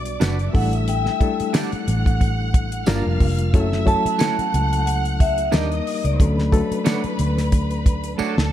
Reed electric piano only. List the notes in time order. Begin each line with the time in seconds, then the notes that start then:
Already playing: G3 B3 D4 F#4 B4
0.53 G3 A3 D4 E4 A4
1.20 G3 A3 D4 E4 A4
2.87 G3 A#3 D4 F4 A#4
3.54 F#3 A3 C#4 E4 A4
3.85 F#3 A3 C#4 E4 A4
5.52 G3 A#3 D#4 A#4
6.20 F#3 A3 C#4 D4 A4
6.52 F#3 A3 D4 A4